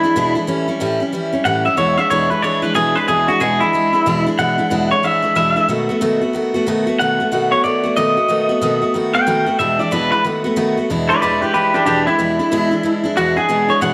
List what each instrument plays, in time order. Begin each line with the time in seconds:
Already playing: clean electric guitar E4
0.03 steel-string acoustic guitar E3 G#3 D4 E4
0.16 steel-string acoustic guitar E2 B2 E3 G#3 D4 E4
0.35 steel-string acoustic guitar E3 G#3 D4 E4
0.47 steel-string acoustic guitar A2 E3 G3 C#4 E4
0.68 steel-string acoustic guitar G3 C#4 E4
0.80 steel-string acoustic guitar A2 E3 G3 C#4 E4
1.00 steel-string acoustic guitar G3 C#4 E4
1.12 steel-string acoustic guitar E3 G3 C#4 E4
1.33 steel-string acoustic guitar G3 C#4 E4
1.45 steel-string acoustic guitar A2 E3 G3 C#4 E4, clean electric guitar F#5
1.65 steel-string acoustic guitar G3 C#4 E4, clean electric guitar E5
1.77 steel-string acoustic guitar E2 B2 E3 G#3 D4 E4, clean electric guitar C#5
1.97 steel-string acoustic guitar E3 G#3 D4 E4, clean electric guitar E5
2.10 steel-string acoustic guitar E2 B2 E3 G#3 D4 E4, clean electric guitar C#5
2.30 steel-string acoustic guitar E3 G#3 D4 E4, clean electric guitar B4
2.42 steel-string acoustic guitar E3 G#3 D4 E4, clean electric guitar C#5
2.62 steel-string acoustic guitar E3 G#3 D4 E4, clean electric guitar B4
2.74 steel-string acoustic guitar E2 B2 E3 G#3 D4 E4, clean electric guitar G#4
2.95 steel-string acoustic guitar E3 G#3 D4 E4, clean electric guitar B4
3.08 steel-string acoustic guitar E2 B2 E3 G#3 D4 E4, clean electric guitar G#4
3.28 steel-string acoustic guitar E3 G#3 D4 E4, clean electric guitar F#4
3.40 steel-string acoustic guitar E2 B2 E3 G#3 D4 E4, clean electric guitar G#4
3.60 steel-string acoustic guitar E3 G#3 D4 E4, clean electric guitar E4
3.73 steel-string acoustic guitar E3 G#3 D4 E4
3.93 steel-string acoustic guitar E3 G#3 D4 E4
4.06 steel-string acoustic guitar E2 B2 E3 G#3 D4 E4
4.26 steel-string acoustic guitar E3 G#3 D4 E4
4.38 steel-string acoustic guitar E2 B2 E3 G#3 D4 E4, clean electric guitar F#5
4.58 steel-string acoustic guitar E3 G#3 D4 E4
4.70 steel-string acoustic guitar E2 B2 E3 G#3 D4 E4
4.91 steel-string acoustic guitar E3 G#3 D4 E4, clean electric guitar C#5
5.03 steel-string acoustic guitar E3 G#3 D4 E4, clean electric guitar E5
5.22 steel-string acoustic guitar E3 G#3 D4 E4
5.35 steel-string acoustic guitar E2 B2 E3 G#3 D4 E4, clean electric guitar E5
5.56 steel-string acoustic guitar E3 G#3 D4 E4
5.68 steel-string acoustic guitar B2 D#3 A3 B3 F#4
5.89 steel-string acoustic guitar A3 B3 F#4
6.01 steel-string acoustic guitar B2 D#3 A3 B3 F#4
6.21 steel-string acoustic guitar A3 B3 F#4
6.33 steel-string acoustic guitar D#3 A3 B3 F#4
6.54 steel-string acoustic guitar A3 B3 F#4
6.66 steel-string acoustic guitar B2 D#3 A3 B3 F#4
6.87 steel-string acoustic guitar A3 B3 F#4
6.99 steel-string acoustic guitar B2 D#3 A3 B3 F#4, clean electric guitar F#5
7.20 steel-string acoustic guitar A3 B3 F#4
7.32 steel-string acoustic guitar B2 D#3 A3 B3 F#4
7.52 steel-string acoustic guitar A3 B3 F#4, clean electric guitar C#5
7.64 steel-string acoustic guitar D#3 A3 B3 F#4, clean electric guitar D5
7.83 steel-string acoustic guitar A3 B3 F#4
7.96 steel-string acoustic guitar B2 D#3 A3 B3 F#4, clean electric guitar D#5
8.17 steel-string acoustic guitar A3 B3 F#4
8.28 steel-string acoustic guitar B2 D#3 A3 B3 F#4
8.49 steel-string acoustic guitar A3 B3 F#4
8.61 steel-string acoustic guitar B2 D#3 A3 B3 F#4
8.82 steel-string acoustic guitar A3 B3 F#4
8.94 steel-string acoustic guitar D#3 A3 B3 F#4
9.14 steel-string acoustic guitar A3 B3 F#4, clean electric guitar G5
9.27 steel-string acoustic guitar B2 D#3 A3 B3 F#4
9.46 steel-string acoustic guitar A3 B3 F#4
9.59 steel-string acoustic guitar E2 B2 E3 G#3 D4 E4, clean electric guitar E5
9.79 steel-string acoustic guitar E3 G#3 D4 E4, clean electric guitar D5
9.91 steel-string acoustic guitar E2 B2 E3 G#3 D4 E4, clean electric guitar B4
10.12 steel-string acoustic guitar E3 G#3 D4 E4, clean electric guitar B4
10.25 steel-string acoustic guitar D#3 A3 B3 F#4
10.44 steel-string acoustic guitar A3 B3 F#4
10.56 steel-string acoustic guitar B2 D#3 A3 B3 F#4
10.77 steel-string acoustic guitar A3 B3 F#4
10.90 steel-string acoustic guitar E2 B2 E3 G#3 D4 E4
11.09 steel-string acoustic guitar E3 D4 E4, clean electric guitar B4 D5
11.21 steel-string acoustic guitar E2 B2 E3 G#3 D4 E4, clean electric guitar B4 D5
11.41 steel-string acoustic guitar E3 G#3 D4 E4, clean electric guitar G4 B4
11.54 steel-string acoustic guitar E3 G#3 D4 E4, clean electric guitar G4 B4
11.74 steel-string acoustic guitar E3 G#3 D4 E4, clean electric guitar D4 G4
11.86 steel-string acoustic guitar E2 B2 E3 G#3 D4 E4, clean electric guitar D4 G4
12.07 steel-string acoustic guitar E3 G#3 D4 E4, clean electric guitar E4
12.19 steel-string acoustic guitar E2 B2 E3 G#3 D4 E4
12.39 steel-string acoustic guitar E3 G#3 D4 E4
12.51 steel-string acoustic guitar E2 B2 E3 G#3 D4 E4
12.71 steel-string acoustic guitar E3 G#3 D4 E4
12.83 steel-string acoustic guitar E3 G#3 D4 E4
13.04 steel-string acoustic guitar E3 G#3 D4 E4
13.17 steel-string acoustic guitar E2 B2 E3 G#3 D4 E4, clean electric guitar F#4
13.36 steel-string acoustic guitar E3 G#3 D4 E4, clean electric guitar G#4
13.49 steel-string acoustic guitar E2 B2 E3 G#3 D4 E4
13.69 steel-string acoustic guitar E3 G#3 D4 E4, clean electric guitar C#5
13.81 steel-string acoustic guitar E2 B2 E3 G#3 D4 E4, clean electric guitar F#5